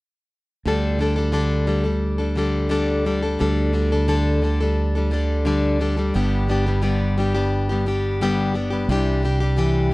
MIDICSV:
0, 0, Header, 1, 3, 480
1, 0, Start_track
1, 0, Tempo, 685714
1, 461, Time_signature, 4, 2, 24, 8
1, 6957, End_track
2, 0, Start_track
2, 0, Title_t, "Steel-string acoustic guitar"
2, 0, Program_c, 0, 25
2, 459, Note_on_c, 0, 50, 60
2, 468, Note_on_c, 0, 55, 62
2, 474, Note_on_c, 0, 62, 66
2, 474, Note_on_c, 0, 69, 72
2, 683, Note_off_c, 0, 50, 0
2, 691, Note_on_c, 0, 50, 42
2, 695, Note_off_c, 0, 62, 0
2, 696, Note_off_c, 0, 55, 0
2, 704, Note_off_c, 0, 69, 0
2, 704, Note_on_c, 0, 55, 45
2, 704, Note_on_c, 0, 62, 56
2, 712, Note_on_c, 0, 69, 55
2, 803, Note_off_c, 0, 69, 0
2, 811, Note_on_c, 0, 69, 43
2, 816, Note_off_c, 0, 62, 0
2, 817, Note_off_c, 0, 50, 0
2, 820, Note_off_c, 0, 55, 0
2, 825, Note_on_c, 0, 62, 44
2, 829, Note_on_c, 0, 55, 38
2, 919, Note_off_c, 0, 55, 0
2, 924, Note_off_c, 0, 62, 0
2, 924, Note_on_c, 0, 50, 59
2, 927, Note_on_c, 0, 55, 65
2, 928, Note_off_c, 0, 69, 0
2, 933, Note_on_c, 0, 62, 65
2, 936, Note_on_c, 0, 69, 66
2, 1161, Note_off_c, 0, 50, 0
2, 1161, Note_off_c, 0, 55, 0
2, 1169, Note_on_c, 0, 50, 53
2, 1169, Note_on_c, 0, 55, 55
2, 1173, Note_off_c, 0, 62, 0
2, 1173, Note_off_c, 0, 69, 0
2, 1181, Note_on_c, 0, 62, 52
2, 1181, Note_on_c, 0, 69, 58
2, 1276, Note_off_c, 0, 69, 0
2, 1284, Note_off_c, 0, 62, 0
2, 1284, Note_on_c, 0, 69, 44
2, 1291, Note_off_c, 0, 55, 0
2, 1292, Note_on_c, 0, 62, 37
2, 1297, Note_off_c, 0, 50, 0
2, 1299, Note_on_c, 0, 55, 33
2, 1519, Note_off_c, 0, 69, 0
2, 1527, Note_off_c, 0, 62, 0
2, 1527, Note_on_c, 0, 69, 40
2, 1532, Note_off_c, 0, 55, 0
2, 1535, Note_on_c, 0, 62, 40
2, 1540, Note_on_c, 0, 55, 39
2, 1649, Note_on_c, 0, 50, 57
2, 1652, Note_off_c, 0, 55, 0
2, 1656, Note_off_c, 0, 69, 0
2, 1658, Note_off_c, 0, 62, 0
2, 1660, Note_on_c, 0, 55, 56
2, 1667, Note_on_c, 0, 62, 58
2, 1669, Note_on_c, 0, 69, 58
2, 1875, Note_off_c, 0, 50, 0
2, 1880, Note_off_c, 0, 55, 0
2, 1884, Note_on_c, 0, 50, 67
2, 1888, Note_on_c, 0, 55, 67
2, 1889, Note_off_c, 0, 62, 0
2, 1891, Note_off_c, 0, 69, 0
2, 1897, Note_on_c, 0, 62, 71
2, 1900, Note_on_c, 0, 69, 66
2, 2127, Note_off_c, 0, 50, 0
2, 2135, Note_off_c, 0, 55, 0
2, 2135, Note_on_c, 0, 50, 51
2, 2136, Note_off_c, 0, 62, 0
2, 2143, Note_off_c, 0, 69, 0
2, 2143, Note_on_c, 0, 55, 55
2, 2145, Note_on_c, 0, 62, 49
2, 2152, Note_on_c, 0, 69, 56
2, 2249, Note_off_c, 0, 69, 0
2, 2258, Note_on_c, 0, 69, 44
2, 2260, Note_off_c, 0, 62, 0
2, 2261, Note_off_c, 0, 50, 0
2, 2265, Note_off_c, 0, 55, 0
2, 2268, Note_on_c, 0, 62, 38
2, 2276, Note_on_c, 0, 55, 35
2, 2372, Note_off_c, 0, 55, 0
2, 2374, Note_on_c, 0, 50, 60
2, 2377, Note_off_c, 0, 62, 0
2, 2378, Note_off_c, 0, 69, 0
2, 2381, Note_on_c, 0, 55, 70
2, 2386, Note_on_c, 0, 62, 70
2, 2386, Note_on_c, 0, 69, 67
2, 2601, Note_off_c, 0, 50, 0
2, 2605, Note_off_c, 0, 55, 0
2, 2609, Note_on_c, 0, 50, 51
2, 2612, Note_off_c, 0, 62, 0
2, 2614, Note_on_c, 0, 55, 47
2, 2620, Note_on_c, 0, 62, 54
2, 2624, Note_off_c, 0, 69, 0
2, 2633, Note_on_c, 0, 69, 54
2, 2736, Note_off_c, 0, 69, 0
2, 2737, Note_off_c, 0, 50, 0
2, 2740, Note_off_c, 0, 55, 0
2, 2740, Note_off_c, 0, 62, 0
2, 2745, Note_on_c, 0, 69, 47
2, 2749, Note_on_c, 0, 62, 42
2, 2761, Note_on_c, 0, 55, 38
2, 2846, Note_off_c, 0, 55, 0
2, 2849, Note_off_c, 0, 62, 0
2, 2854, Note_off_c, 0, 69, 0
2, 2855, Note_on_c, 0, 55, 62
2, 2857, Note_on_c, 0, 50, 63
2, 2857, Note_on_c, 0, 62, 74
2, 2863, Note_on_c, 0, 69, 75
2, 3085, Note_off_c, 0, 50, 0
2, 3094, Note_on_c, 0, 50, 48
2, 3095, Note_off_c, 0, 55, 0
2, 3097, Note_off_c, 0, 62, 0
2, 3103, Note_on_c, 0, 55, 48
2, 3104, Note_off_c, 0, 69, 0
2, 3105, Note_on_c, 0, 62, 55
2, 3112, Note_on_c, 0, 69, 54
2, 3215, Note_off_c, 0, 69, 0
2, 3220, Note_off_c, 0, 50, 0
2, 3224, Note_on_c, 0, 69, 49
2, 3225, Note_off_c, 0, 55, 0
2, 3226, Note_off_c, 0, 62, 0
2, 3235, Note_on_c, 0, 62, 41
2, 3240, Note_on_c, 0, 55, 39
2, 3458, Note_off_c, 0, 69, 0
2, 3465, Note_off_c, 0, 62, 0
2, 3466, Note_on_c, 0, 69, 43
2, 3473, Note_off_c, 0, 55, 0
2, 3473, Note_on_c, 0, 62, 40
2, 3483, Note_on_c, 0, 55, 37
2, 3573, Note_off_c, 0, 55, 0
2, 3578, Note_on_c, 0, 50, 56
2, 3582, Note_on_c, 0, 55, 62
2, 3583, Note_off_c, 0, 62, 0
2, 3586, Note_off_c, 0, 69, 0
2, 3591, Note_on_c, 0, 62, 60
2, 3596, Note_on_c, 0, 69, 63
2, 3808, Note_off_c, 0, 50, 0
2, 3816, Note_off_c, 0, 55, 0
2, 3816, Note_on_c, 0, 50, 70
2, 3818, Note_off_c, 0, 62, 0
2, 3820, Note_off_c, 0, 69, 0
2, 3825, Note_on_c, 0, 55, 66
2, 3826, Note_on_c, 0, 62, 84
2, 3828, Note_on_c, 0, 69, 74
2, 4047, Note_off_c, 0, 50, 0
2, 4056, Note_off_c, 0, 55, 0
2, 4056, Note_on_c, 0, 50, 48
2, 4060, Note_off_c, 0, 62, 0
2, 4065, Note_on_c, 0, 55, 56
2, 4067, Note_off_c, 0, 69, 0
2, 4068, Note_on_c, 0, 62, 58
2, 4074, Note_on_c, 0, 69, 56
2, 4168, Note_off_c, 0, 69, 0
2, 4173, Note_off_c, 0, 62, 0
2, 4176, Note_on_c, 0, 69, 46
2, 4180, Note_off_c, 0, 50, 0
2, 4182, Note_off_c, 0, 55, 0
2, 4182, Note_on_c, 0, 62, 41
2, 4191, Note_on_c, 0, 55, 38
2, 4295, Note_off_c, 0, 55, 0
2, 4299, Note_on_c, 0, 43, 76
2, 4301, Note_off_c, 0, 62, 0
2, 4301, Note_off_c, 0, 69, 0
2, 4302, Note_on_c, 0, 50, 70
2, 4303, Note_on_c, 0, 55, 67
2, 4309, Note_on_c, 0, 62, 72
2, 4310, Note_on_c, 0, 59, 71
2, 4311, Note_on_c, 0, 67, 73
2, 4531, Note_off_c, 0, 55, 0
2, 4538, Note_off_c, 0, 59, 0
2, 4539, Note_on_c, 0, 55, 46
2, 4541, Note_off_c, 0, 62, 0
2, 4542, Note_off_c, 0, 43, 0
2, 4543, Note_off_c, 0, 50, 0
2, 4546, Note_on_c, 0, 59, 53
2, 4548, Note_off_c, 0, 67, 0
2, 4549, Note_on_c, 0, 62, 57
2, 4557, Note_on_c, 0, 67, 64
2, 4656, Note_off_c, 0, 67, 0
2, 4662, Note_off_c, 0, 55, 0
2, 4664, Note_on_c, 0, 67, 51
2, 4665, Note_off_c, 0, 59, 0
2, 4665, Note_off_c, 0, 62, 0
2, 4673, Note_on_c, 0, 59, 41
2, 4673, Note_on_c, 0, 62, 43
2, 4678, Note_on_c, 0, 55, 38
2, 4770, Note_off_c, 0, 55, 0
2, 4772, Note_on_c, 0, 43, 73
2, 4773, Note_off_c, 0, 59, 0
2, 4775, Note_off_c, 0, 62, 0
2, 4778, Note_off_c, 0, 67, 0
2, 4778, Note_on_c, 0, 50, 69
2, 4778, Note_on_c, 0, 55, 71
2, 4781, Note_on_c, 0, 59, 67
2, 4783, Note_on_c, 0, 62, 68
2, 4786, Note_on_c, 0, 67, 70
2, 5015, Note_off_c, 0, 55, 0
2, 5017, Note_off_c, 0, 59, 0
2, 5018, Note_off_c, 0, 43, 0
2, 5021, Note_off_c, 0, 50, 0
2, 5023, Note_off_c, 0, 62, 0
2, 5023, Note_on_c, 0, 55, 56
2, 5025, Note_off_c, 0, 67, 0
2, 5025, Note_on_c, 0, 59, 52
2, 5032, Note_on_c, 0, 62, 51
2, 5040, Note_on_c, 0, 67, 57
2, 5132, Note_off_c, 0, 67, 0
2, 5140, Note_off_c, 0, 62, 0
2, 5141, Note_on_c, 0, 67, 45
2, 5143, Note_off_c, 0, 55, 0
2, 5144, Note_off_c, 0, 59, 0
2, 5148, Note_on_c, 0, 62, 45
2, 5153, Note_on_c, 0, 59, 40
2, 5163, Note_on_c, 0, 55, 39
2, 5376, Note_off_c, 0, 67, 0
2, 5384, Note_on_c, 0, 67, 49
2, 5385, Note_off_c, 0, 62, 0
2, 5388, Note_off_c, 0, 59, 0
2, 5393, Note_off_c, 0, 55, 0
2, 5394, Note_on_c, 0, 62, 46
2, 5400, Note_on_c, 0, 59, 41
2, 5404, Note_on_c, 0, 55, 38
2, 5495, Note_off_c, 0, 55, 0
2, 5499, Note_off_c, 0, 59, 0
2, 5503, Note_off_c, 0, 67, 0
2, 5503, Note_on_c, 0, 55, 55
2, 5506, Note_off_c, 0, 62, 0
2, 5507, Note_on_c, 0, 59, 57
2, 5515, Note_on_c, 0, 62, 59
2, 5516, Note_on_c, 0, 67, 69
2, 5742, Note_off_c, 0, 55, 0
2, 5744, Note_off_c, 0, 59, 0
2, 5748, Note_off_c, 0, 62, 0
2, 5749, Note_off_c, 0, 67, 0
2, 5749, Note_on_c, 0, 43, 62
2, 5749, Note_on_c, 0, 50, 71
2, 5752, Note_on_c, 0, 55, 71
2, 5759, Note_on_c, 0, 59, 73
2, 5759, Note_on_c, 0, 67, 77
2, 5762, Note_on_c, 0, 62, 74
2, 5972, Note_off_c, 0, 55, 0
2, 5979, Note_off_c, 0, 59, 0
2, 5980, Note_on_c, 0, 55, 52
2, 5984, Note_off_c, 0, 62, 0
2, 5985, Note_off_c, 0, 43, 0
2, 5985, Note_off_c, 0, 50, 0
2, 5987, Note_off_c, 0, 67, 0
2, 5987, Note_on_c, 0, 59, 54
2, 5992, Note_on_c, 0, 62, 56
2, 5995, Note_on_c, 0, 67, 58
2, 6084, Note_off_c, 0, 67, 0
2, 6093, Note_on_c, 0, 67, 46
2, 6097, Note_off_c, 0, 62, 0
2, 6099, Note_off_c, 0, 59, 0
2, 6100, Note_off_c, 0, 55, 0
2, 6106, Note_on_c, 0, 62, 41
2, 6107, Note_on_c, 0, 59, 36
2, 6114, Note_on_c, 0, 55, 32
2, 6217, Note_off_c, 0, 67, 0
2, 6223, Note_off_c, 0, 55, 0
2, 6223, Note_off_c, 0, 62, 0
2, 6224, Note_off_c, 0, 59, 0
2, 6225, Note_on_c, 0, 48, 72
2, 6231, Note_on_c, 0, 55, 71
2, 6232, Note_on_c, 0, 52, 77
2, 6238, Note_on_c, 0, 62, 72
2, 6243, Note_on_c, 0, 67, 73
2, 6450, Note_off_c, 0, 52, 0
2, 6453, Note_off_c, 0, 55, 0
2, 6458, Note_on_c, 0, 52, 50
2, 6462, Note_off_c, 0, 48, 0
2, 6462, Note_on_c, 0, 55, 53
2, 6463, Note_off_c, 0, 62, 0
2, 6469, Note_off_c, 0, 67, 0
2, 6472, Note_on_c, 0, 62, 56
2, 6477, Note_on_c, 0, 67, 59
2, 6574, Note_off_c, 0, 67, 0
2, 6579, Note_off_c, 0, 52, 0
2, 6580, Note_off_c, 0, 55, 0
2, 6582, Note_off_c, 0, 62, 0
2, 6582, Note_on_c, 0, 67, 49
2, 6590, Note_on_c, 0, 62, 42
2, 6601, Note_on_c, 0, 55, 37
2, 6693, Note_off_c, 0, 55, 0
2, 6696, Note_on_c, 0, 48, 67
2, 6700, Note_off_c, 0, 67, 0
2, 6701, Note_off_c, 0, 62, 0
2, 6701, Note_on_c, 0, 55, 69
2, 6706, Note_on_c, 0, 52, 75
2, 6710, Note_on_c, 0, 62, 65
2, 6710, Note_on_c, 0, 67, 76
2, 6930, Note_off_c, 0, 52, 0
2, 6936, Note_off_c, 0, 48, 0
2, 6937, Note_off_c, 0, 55, 0
2, 6941, Note_off_c, 0, 62, 0
2, 6944, Note_off_c, 0, 67, 0
2, 6957, End_track
3, 0, Start_track
3, 0, Title_t, "Fingered electric bass"
3, 0, Program_c, 1, 33
3, 459, Note_on_c, 1, 38, 55
3, 2356, Note_off_c, 1, 38, 0
3, 2389, Note_on_c, 1, 38, 62
3, 4279, Note_off_c, 1, 38, 0
3, 4307, Note_on_c, 1, 31, 62
3, 6194, Note_off_c, 1, 31, 0
3, 6219, Note_on_c, 1, 36, 63
3, 6957, Note_off_c, 1, 36, 0
3, 6957, End_track
0, 0, End_of_file